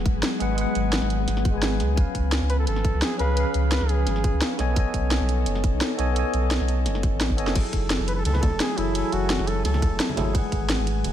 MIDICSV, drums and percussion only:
0, 0, Header, 1, 2, 480
1, 0, Start_track
1, 0, Tempo, 348837
1, 797, Time_signature, 4, 2, 24, 8
1, 15311, End_track
2, 0, Start_track
2, 0, Title_t, "Drums"
2, 77, Note_on_c, 9, 36, 114
2, 77, Note_on_c, 9, 42, 67
2, 214, Note_off_c, 9, 36, 0
2, 214, Note_off_c, 9, 42, 0
2, 316, Note_on_c, 9, 38, 127
2, 316, Note_on_c, 9, 42, 94
2, 454, Note_off_c, 9, 38, 0
2, 454, Note_off_c, 9, 42, 0
2, 556, Note_on_c, 9, 42, 67
2, 694, Note_off_c, 9, 42, 0
2, 796, Note_on_c, 9, 42, 88
2, 934, Note_off_c, 9, 42, 0
2, 1036, Note_on_c, 9, 42, 64
2, 1174, Note_off_c, 9, 42, 0
2, 1277, Note_on_c, 9, 38, 125
2, 1277, Note_on_c, 9, 42, 91
2, 1403, Note_on_c, 9, 40, 34
2, 1414, Note_off_c, 9, 38, 0
2, 1414, Note_off_c, 9, 42, 0
2, 1517, Note_on_c, 9, 42, 62
2, 1540, Note_off_c, 9, 40, 0
2, 1654, Note_off_c, 9, 42, 0
2, 1757, Note_on_c, 9, 40, 37
2, 1757, Note_on_c, 9, 42, 90
2, 1884, Note_off_c, 9, 40, 0
2, 1884, Note_on_c, 9, 40, 38
2, 1894, Note_off_c, 9, 42, 0
2, 1996, Note_on_c, 9, 42, 66
2, 1997, Note_on_c, 9, 36, 111
2, 2021, Note_off_c, 9, 40, 0
2, 2134, Note_off_c, 9, 42, 0
2, 2135, Note_off_c, 9, 36, 0
2, 2237, Note_on_c, 9, 38, 127
2, 2237, Note_on_c, 9, 42, 92
2, 2375, Note_off_c, 9, 38, 0
2, 2375, Note_off_c, 9, 42, 0
2, 2477, Note_on_c, 9, 40, 36
2, 2477, Note_on_c, 9, 42, 65
2, 2615, Note_off_c, 9, 40, 0
2, 2615, Note_off_c, 9, 42, 0
2, 2717, Note_on_c, 9, 36, 127
2, 2717, Note_on_c, 9, 42, 89
2, 2854, Note_off_c, 9, 36, 0
2, 2854, Note_off_c, 9, 42, 0
2, 2956, Note_on_c, 9, 36, 60
2, 2957, Note_on_c, 9, 42, 67
2, 3094, Note_off_c, 9, 36, 0
2, 3094, Note_off_c, 9, 42, 0
2, 3196, Note_on_c, 9, 38, 123
2, 3196, Note_on_c, 9, 42, 92
2, 3333, Note_off_c, 9, 38, 0
2, 3333, Note_off_c, 9, 42, 0
2, 3436, Note_on_c, 9, 42, 63
2, 3573, Note_off_c, 9, 42, 0
2, 3675, Note_on_c, 9, 42, 88
2, 3802, Note_on_c, 9, 40, 35
2, 3813, Note_off_c, 9, 42, 0
2, 3916, Note_on_c, 9, 36, 106
2, 3916, Note_on_c, 9, 42, 65
2, 3940, Note_off_c, 9, 40, 0
2, 4053, Note_off_c, 9, 36, 0
2, 4053, Note_off_c, 9, 42, 0
2, 4156, Note_on_c, 9, 38, 126
2, 4156, Note_on_c, 9, 42, 94
2, 4294, Note_off_c, 9, 38, 0
2, 4294, Note_off_c, 9, 42, 0
2, 4395, Note_on_c, 9, 42, 65
2, 4533, Note_off_c, 9, 42, 0
2, 4635, Note_on_c, 9, 42, 96
2, 4773, Note_off_c, 9, 42, 0
2, 4875, Note_on_c, 9, 42, 68
2, 5013, Note_off_c, 9, 42, 0
2, 5115, Note_on_c, 9, 38, 117
2, 5115, Note_on_c, 9, 42, 94
2, 5242, Note_on_c, 9, 40, 32
2, 5253, Note_off_c, 9, 38, 0
2, 5253, Note_off_c, 9, 42, 0
2, 5355, Note_on_c, 9, 42, 65
2, 5380, Note_off_c, 9, 40, 0
2, 5493, Note_off_c, 9, 42, 0
2, 5596, Note_on_c, 9, 40, 36
2, 5596, Note_on_c, 9, 42, 95
2, 5722, Note_off_c, 9, 40, 0
2, 5722, Note_on_c, 9, 40, 35
2, 5733, Note_off_c, 9, 42, 0
2, 5835, Note_on_c, 9, 36, 107
2, 5836, Note_on_c, 9, 42, 69
2, 5860, Note_off_c, 9, 40, 0
2, 5973, Note_off_c, 9, 36, 0
2, 5973, Note_off_c, 9, 42, 0
2, 6076, Note_on_c, 9, 38, 118
2, 6076, Note_on_c, 9, 42, 96
2, 6213, Note_off_c, 9, 38, 0
2, 6213, Note_off_c, 9, 42, 0
2, 6315, Note_on_c, 9, 40, 35
2, 6315, Note_on_c, 9, 42, 69
2, 6452, Note_off_c, 9, 40, 0
2, 6452, Note_off_c, 9, 42, 0
2, 6555, Note_on_c, 9, 42, 94
2, 6556, Note_on_c, 9, 36, 118
2, 6693, Note_off_c, 9, 42, 0
2, 6694, Note_off_c, 9, 36, 0
2, 6796, Note_on_c, 9, 36, 59
2, 6796, Note_on_c, 9, 42, 68
2, 6934, Note_off_c, 9, 36, 0
2, 6934, Note_off_c, 9, 42, 0
2, 7036, Note_on_c, 9, 38, 116
2, 7036, Note_on_c, 9, 42, 98
2, 7174, Note_off_c, 9, 38, 0
2, 7174, Note_off_c, 9, 42, 0
2, 7276, Note_on_c, 9, 42, 67
2, 7413, Note_off_c, 9, 42, 0
2, 7516, Note_on_c, 9, 42, 97
2, 7643, Note_on_c, 9, 40, 37
2, 7654, Note_off_c, 9, 42, 0
2, 7757, Note_on_c, 9, 36, 102
2, 7757, Note_on_c, 9, 42, 71
2, 7780, Note_off_c, 9, 40, 0
2, 7894, Note_off_c, 9, 42, 0
2, 7895, Note_off_c, 9, 36, 0
2, 7996, Note_on_c, 9, 38, 118
2, 7996, Note_on_c, 9, 42, 97
2, 8134, Note_off_c, 9, 38, 0
2, 8134, Note_off_c, 9, 42, 0
2, 8237, Note_on_c, 9, 42, 72
2, 8375, Note_off_c, 9, 42, 0
2, 8477, Note_on_c, 9, 42, 98
2, 8614, Note_off_c, 9, 42, 0
2, 8717, Note_on_c, 9, 42, 68
2, 8855, Note_off_c, 9, 42, 0
2, 8958, Note_on_c, 9, 38, 122
2, 8958, Note_on_c, 9, 42, 98
2, 9084, Note_on_c, 9, 40, 33
2, 9096, Note_off_c, 9, 38, 0
2, 9096, Note_off_c, 9, 42, 0
2, 9197, Note_on_c, 9, 42, 69
2, 9221, Note_off_c, 9, 40, 0
2, 9335, Note_off_c, 9, 42, 0
2, 9437, Note_on_c, 9, 40, 37
2, 9437, Note_on_c, 9, 42, 103
2, 9563, Note_off_c, 9, 40, 0
2, 9563, Note_on_c, 9, 40, 38
2, 9574, Note_off_c, 9, 42, 0
2, 9677, Note_on_c, 9, 36, 103
2, 9677, Note_on_c, 9, 42, 71
2, 9701, Note_off_c, 9, 40, 0
2, 9815, Note_off_c, 9, 36, 0
2, 9815, Note_off_c, 9, 42, 0
2, 9916, Note_on_c, 9, 38, 115
2, 9916, Note_on_c, 9, 42, 104
2, 10044, Note_on_c, 9, 36, 58
2, 10054, Note_off_c, 9, 38, 0
2, 10054, Note_off_c, 9, 42, 0
2, 10157, Note_on_c, 9, 42, 74
2, 10181, Note_off_c, 9, 36, 0
2, 10283, Note_on_c, 9, 38, 80
2, 10294, Note_off_c, 9, 42, 0
2, 10396, Note_on_c, 9, 42, 97
2, 10396, Note_on_c, 9, 49, 77
2, 10396, Note_on_c, 9, 51, 76
2, 10397, Note_on_c, 9, 36, 122
2, 10421, Note_off_c, 9, 38, 0
2, 10534, Note_off_c, 9, 42, 0
2, 10534, Note_off_c, 9, 49, 0
2, 10534, Note_off_c, 9, 51, 0
2, 10535, Note_off_c, 9, 36, 0
2, 10636, Note_on_c, 9, 42, 72
2, 10636, Note_on_c, 9, 51, 54
2, 10637, Note_on_c, 9, 36, 64
2, 10774, Note_off_c, 9, 36, 0
2, 10774, Note_off_c, 9, 42, 0
2, 10774, Note_off_c, 9, 51, 0
2, 10875, Note_on_c, 9, 38, 125
2, 10875, Note_on_c, 9, 42, 101
2, 10875, Note_on_c, 9, 51, 77
2, 11013, Note_off_c, 9, 38, 0
2, 11013, Note_off_c, 9, 42, 0
2, 11013, Note_off_c, 9, 51, 0
2, 11115, Note_on_c, 9, 42, 69
2, 11115, Note_on_c, 9, 51, 51
2, 11253, Note_off_c, 9, 42, 0
2, 11253, Note_off_c, 9, 51, 0
2, 11355, Note_on_c, 9, 42, 99
2, 11355, Note_on_c, 9, 51, 72
2, 11363, Note_on_c, 9, 63, 74
2, 11482, Note_on_c, 9, 40, 39
2, 11486, Note_off_c, 9, 63, 0
2, 11486, Note_on_c, 9, 63, 72
2, 11493, Note_off_c, 9, 42, 0
2, 11493, Note_off_c, 9, 51, 0
2, 11591, Note_off_c, 9, 63, 0
2, 11591, Note_on_c, 9, 63, 90
2, 11596, Note_on_c, 9, 36, 109
2, 11596, Note_on_c, 9, 42, 69
2, 11596, Note_on_c, 9, 51, 54
2, 11620, Note_off_c, 9, 40, 0
2, 11728, Note_off_c, 9, 63, 0
2, 11734, Note_off_c, 9, 36, 0
2, 11734, Note_off_c, 9, 42, 0
2, 11734, Note_off_c, 9, 51, 0
2, 11836, Note_on_c, 9, 38, 125
2, 11836, Note_on_c, 9, 42, 103
2, 11836, Note_on_c, 9, 51, 79
2, 11974, Note_off_c, 9, 38, 0
2, 11974, Note_off_c, 9, 42, 0
2, 11974, Note_off_c, 9, 51, 0
2, 12077, Note_on_c, 9, 42, 72
2, 12077, Note_on_c, 9, 51, 54
2, 12214, Note_off_c, 9, 42, 0
2, 12214, Note_off_c, 9, 51, 0
2, 12316, Note_on_c, 9, 42, 97
2, 12316, Note_on_c, 9, 51, 72
2, 12453, Note_off_c, 9, 42, 0
2, 12453, Note_off_c, 9, 51, 0
2, 12556, Note_on_c, 9, 42, 66
2, 12556, Note_on_c, 9, 51, 51
2, 12693, Note_off_c, 9, 42, 0
2, 12693, Note_off_c, 9, 51, 0
2, 12797, Note_on_c, 9, 38, 127
2, 12797, Note_on_c, 9, 42, 99
2, 12797, Note_on_c, 9, 51, 74
2, 12924, Note_on_c, 9, 40, 36
2, 12934, Note_off_c, 9, 38, 0
2, 12934, Note_off_c, 9, 42, 0
2, 12934, Note_off_c, 9, 51, 0
2, 13037, Note_on_c, 9, 42, 67
2, 13037, Note_on_c, 9, 51, 50
2, 13042, Note_on_c, 9, 60, 59
2, 13061, Note_off_c, 9, 40, 0
2, 13175, Note_off_c, 9, 42, 0
2, 13175, Note_off_c, 9, 51, 0
2, 13180, Note_off_c, 9, 60, 0
2, 13277, Note_on_c, 9, 40, 37
2, 13277, Note_on_c, 9, 42, 93
2, 13277, Note_on_c, 9, 51, 73
2, 13403, Note_on_c, 9, 63, 72
2, 13404, Note_off_c, 9, 40, 0
2, 13404, Note_on_c, 9, 40, 40
2, 13415, Note_off_c, 9, 42, 0
2, 13415, Note_off_c, 9, 51, 0
2, 13517, Note_on_c, 9, 36, 111
2, 13518, Note_on_c, 9, 42, 68
2, 13518, Note_on_c, 9, 51, 55
2, 13541, Note_off_c, 9, 63, 0
2, 13542, Note_off_c, 9, 40, 0
2, 13654, Note_off_c, 9, 36, 0
2, 13655, Note_off_c, 9, 42, 0
2, 13655, Note_off_c, 9, 51, 0
2, 13758, Note_on_c, 9, 38, 127
2, 13758, Note_on_c, 9, 42, 100
2, 13758, Note_on_c, 9, 51, 76
2, 13885, Note_on_c, 9, 63, 69
2, 13896, Note_off_c, 9, 38, 0
2, 13896, Note_off_c, 9, 42, 0
2, 13896, Note_off_c, 9, 51, 0
2, 13998, Note_off_c, 9, 63, 0
2, 13998, Note_on_c, 9, 40, 40
2, 13998, Note_on_c, 9, 42, 72
2, 13998, Note_on_c, 9, 51, 54
2, 13998, Note_on_c, 9, 63, 106
2, 14135, Note_off_c, 9, 40, 0
2, 14135, Note_off_c, 9, 42, 0
2, 14135, Note_off_c, 9, 51, 0
2, 14135, Note_off_c, 9, 63, 0
2, 14237, Note_on_c, 9, 36, 127
2, 14238, Note_on_c, 9, 42, 88
2, 14238, Note_on_c, 9, 51, 70
2, 14375, Note_off_c, 9, 36, 0
2, 14376, Note_off_c, 9, 42, 0
2, 14376, Note_off_c, 9, 51, 0
2, 14477, Note_on_c, 9, 36, 65
2, 14478, Note_on_c, 9, 42, 65
2, 14478, Note_on_c, 9, 51, 50
2, 14615, Note_off_c, 9, 36, 0
2, 14616, Note_off_c, 9, 42, 0
2, 14616, Note_off_c, 9, 51, 0
2, 14717, Note_on_c, 9, 38, 127
2, 14717, Note_on_c, 9, 42, 94
2, 14717, Note_on_c, 9, 51, 76
2, 14855, Note_off_c, 9, 38, 0
2, 14855, Note_off_c, 9, 42, 0
2, 14855, Note_off_c, 9, 51, 0
2, 14958, Note_on_c, 9, 42, 65
2, 14958, Note_on_c, 9, 51, 50
2, 15095, Note_off_c, 9, 42, 0
2, 15095, Note_off_c, 9, 51, 0
2, 15197, Note_on_c, 9, 42, 92
2, 15197, Note_on_c, 9, 51, 69
2, 15200, Note_on_c, 9, 63, 62
2, 15311, Note_off_c, 9, 42, 0
2, 15311, Note_off_c, 9, 51, 0
2, 15311, Note_off_c, 9, 63, 0
2, 15311, End_track
0, 0, End_of_file